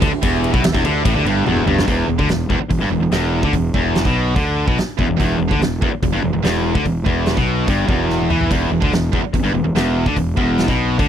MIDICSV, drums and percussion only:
0, 0, Header, 1, 2, 480
1, 0, Start_track
1, 0, Key_signature, 1, "minor"
1, 0, Tempo, 414079
1, 255, Time_signature, 4, 2, 24, 8
1, 12849, End_track
2, 0, Start_track
2, 0, Title_t, "Drums"
2, 22, Note_on_c, 9, 51, 72
2, 23, Note_on_c, 9, 36, 102
2, 138, Note_off_c, 9, 51, 0
2, 139, Note_off_c, 9, 36, 0
2, 261, Note_on_c, 9, 51, 92
2, 265, Note_on_c, 9, 36, 101
2, 377, Note_off_c, 9, 51, 0
2, 381, Note_off_c, 9, 36, 0
2, 510, Note_on_c, 9, 51, 67
2, 624, Note_on_c, 9, 36, 100
2, 626, Note_off_c, 9, 51, 0
2, 740, Note_off_c, 9, 36, 0
2, 742, Note_on_c, 9, 51, 94
2, 754, Note_on_c, 9, 38, 110
2, 858, Note_off_c, 9, 51, 0
2, 863, Note_on_c, 9, 36, 96
2, 870, Note_off_c, 9, 38, 0
2, 979, Note_off_c, 9, 36, 0
2, 981, Note_on_c, 9, 51, 68
2, 1097, Note_off_c, 9, 51, 0
2, 1221, Note_on_c, 9, 36, 107
2, 1222, Note_on_c, 9, 51, 87
2, 1337, Note_off_c, 9, 36, 0
2, 1338, Note_off_c, 9, 51, 0
2, 1465, Note_on_c, 9, 51, 69
2, 1581, Note_off_c, 9, 51, 0
2, 1699, Note_on_c, 9, 48, 61
2, 1815, Note_off_c, 9, 48, 0
2, 1815, Note_on_c, 9, 47, 58
2, 1931, Note_off_c, 9, 47, 0
2, 1942, Note_on_c, 9, 45, 85
2, 2057, Note_off_c, 9, 45, 0
2, 2070, Note_on_c, 9, 38, 89
2, 2177, Note_on_c, 9, 36, 91
2, 2178, Note_on_c, 9, 46, 44
2, 2186, Note_off_c, 9, 38, 0
2, 2293, Note_off_c, 9, 36, 0
2, 2293, Note_off_c, 9, 46, 0
2, 2537, Note_on_c, 9, 36, 84
2, 2653, Note_off_c, 9, 36, 0
2, 2654, Note_on_c, 9, 46, 45
2, 2665, Note_on_c, 9, 38, 90
2, 2770, Note_off_c, 9, 46, 0
2, 2781, Note_off_c, 9, 38, 0
2, 2896, Note_on_c, 9, 36, 88
2, 3012, Note_off_c, 9, 36, 0
2, 3136, Note_on_c, 9, 36, 76
2, 3138, Note_on_c, 9, 46, 44
2, 3252, Note_off_c, 9, 36, 0
2, 3254, Note_off_c, 9, 46, 0
2, 3611, Note_on_c, 9, 46, 45
2, 3623, Note_on_c, 9, 38, 94
2, 3727, Note_off_c, 9, 46, 0
2, 3739, Note_off_c, 9, 38, 0
2, 3976, Note_on_c, 9, 36, 92
2, 4092, Note_off_c, 9, 36, 0
2, 4095, Note_on_c, 9, 36, 83
2, 4101, Note_on_c, 9, 46, 48
2, 4211, Note_off_c, 9, 36, 0
2, 4217, Note_off_c, 9, 46, 0
2, 4336, Note_on_c, 9, 36, 84
2, 4452, Note_off_c, 9, 36, 0
2, 4580, Note_on_c, 9, 46, 47
2, 4591, Note_on_c, 9, 38, 96
2, 4696, Note_off_c, 9, 46, 0
2, 4696, Note_on_c, 9, 36, 80
2, 4707, Note_off_c, 9, 38, 0
2, 4812, Note_off_c, 9, 36, 0
2, 5055, Note_on_c, 9, 36, 97
2, 5057, Note_on_c, 9, 46, 41
2, 5171, Note_off_c, 9, 36, 0
2, 5173, Note_off_c, 9, 46, 0
2, 5420, Note_on_c, 9, 36, 91
2, 5536, Note_off_c, 9, 36, 0
2, 5540, Note_on_c, 9, 46, 41
2, 5552, Note_on_c, 9, 38, 92
2, 5656, Note_off_c, 9, 46, 0
2, 5668, Note_off_c, 9, 38, 0
2, 5782, Note_on_c, 9, 36, 89
2, 5898, Note_off_c, 9, 36, 0
2, 6025, Note_on_c, 9, 36, 84
2, 6031, Note_on_c, 9, 46, 42
2, 6141, Note_off_c, 9, 36, 0
2, 6147, Note_off_c, 9, 46, 0
2, 6387, Note_on_c, 9, 36, 84
2, 6503, Note_off_c, 9, 36, 0
2, 6510, Note_on_c, 9, 46, 47
2, 6522, Note_on_c, 9, 38, 95
2, 6626, Note_off_c, 9, 46, 0
2, 6638, Note_off_c, 9, 38, 0
2, 6747, Note_on_c, 9, 36, 96
2, 6863, Note_off_c, 9, 36, 0
2, 6985, Note_on_c, 9, 46, 48
2, 6986, Note_on_c, 9, 36, 77
2, 7101, Note_off_c, 9, 46, 0
2, 7102, Note_off_c, 9, 36, 0
2, 7468, Note_on_c, 9, 46, 48
2, 7480, Note_on_c, 9, 38, 94
2, 7584, Note_off_c, 9, 46, 0
2, 7595, Note_off_c, 9, 38, 0
2, 7827, Note_on_c, 9, 36, 100
2, 7943, Note_off_c, 9, 36, 0
2, 7947, Note_on_c, 9, 36, 83
2, 7949, Note_on_c, 9, 46, 47
2, 8063, Note_off_c, 9, 36, 0
2, 8065, Note_off_c, 9, 46, 0
2, 8186, Note_on_c, 9, 36, 88
2, 8301, Note_off_c, 9, 36, 0
2, 8415, Note_on_c, 9, 46, 48
2, 8426, Note_on_c, 9, 38, 91
2, 8531, Note_off_c, 9, 46, 0
2, 8542, Note_off_c, 9, 38, 0
2, 8544, Note_on_c, 9, 36, 92
2, 8660, Note_off_c, 9, 36, 0
2, 8896, Note_on_c, 9, 46, 47
2, 8901, Note_on_c, 9, 36, 88
2, 9012, Note_off_c, 9, 46, 0
2, 9017, Note_off_c, 9, 36, 0
2, 9141, Note_on_c, 9, 36, 94
2, 9257, Note_off_c, 9, 36, 0
2, 9385, Note_on_c, 9, 38, 50
2, 9496, Note_on_c, 9, 48, 47
2, 9501, Note_off_c, 9, 38, 0
2, 9612, Note_off_c, 9, 48, 0
2, 9625, Note_on_c, 9, 45, 74
2, 9741, Note_off_c, 9, 45, 0
2, 9746, Note_on_c, 9, 43, 72
2, 9862, Note_off_c, 9, 43, 0
2, 9862, Note_on_c, 9, 36, 89
2, 9868, Note_on_c, 9, 46, 42
2, 9868, Note_on_c, 9, 49, 68
2, 9978, Note_off_c, 9, 36, 0
2, 9984, Note_off_c, 9, 46, 0
2, 9984, Note_off_c, 9, 49, 0
2, 10224, Note_on_c, 9, 36, 88
2, 10340, Note_off_c, 9, 36, 0
2, 10346, Note_on_c, 9, 46, 42
2, 10357, Note_on_c, 9, 38, 99
2, 10462, Note_off_c, 9, 46, 0
2, 10473, Note_off_c, 9, 38, 0
2, 10584, Note_on_c, 9, 36, 87
2, 10700, Note_off_c, 9, 36, 0
2, 10824, Note_on_c, 9, 36, 84
2, 10832, Note_on_c, 9, 46, 45
2, 10940, Note_off_c, 9, 36, 0
2, 10948, Note_off_c, 9, 46, 0
2, 11310, Note_on_c, 9, 46, 45
2, 11322, Note_on_c, 9, 38, 99
2, 11426, Note_off_c, 9, 46, 0
2, 11437, Note_off_c, 9, 38, 0
2, 11664, Note_on_c, 9, 36, 93
2, 11780, Note_off_c, 9, 36, 0
2, 11784, Note_on_c, 9, 36, 82
2, 11790, Note_on_c, 9, 46, 47
2, 11900, Note_off_c, 9, 36, 0
2, 11906, Note_off_c, 9, 46, 0
2, 12023, Note_on_c, 9, 36, 88
2, 12139, Note_off_c, 9, 36, 0
2, 12265, Note_on_c, 9, 46, 45
2, 12276, Note_on_c, 9, 38, 101
2, 12381, Note_off_c, 9, 46, 0
2, 12382, Note_on_c, 9, 36, 85
2, 12392, Note_off_c, 9, 38, 0
2, 12497, Note_off_c, 9, 36, 0
2, 12741, Note_on_c, 9, 36, 93
2, 12744, Note_on_c, 9, 46, 46
2, 12849, Note_off_c, 9, 36, 0
2, 12849, Note_off_c, 9, 46, 0
2, 12849, End_track
0, 0, End_of_file